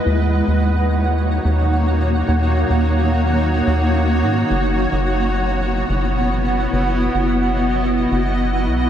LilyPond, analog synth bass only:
\new Staff \with { instrumentName = "Analog synth bass" } { \clef bass \time 4/4 \key dis \phrygian \tempo 4 = 108 dis,8. dis,4.~ dis,16 dis,4. | dis,8. dis,4.~ dis,16 dis,4 gis,8 | fis,,8. fis,,4.~ fis,,16 fis,,4. | fis,,8. fis,,4.~ fis,,16 fis,,4 b,,8 | }